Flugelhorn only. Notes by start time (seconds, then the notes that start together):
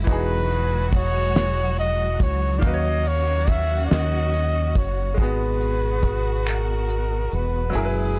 0.10 B4
0.95 C#5
1.79 D#5
2.23 C#5
2.58 D5
2.65 D#5
3.08 C#5
3.50 E5
3.86 D5
3.92 D#5
4.77 C#5
5.20 B4
6.48 A#4
7.34 B4
7.77 G#4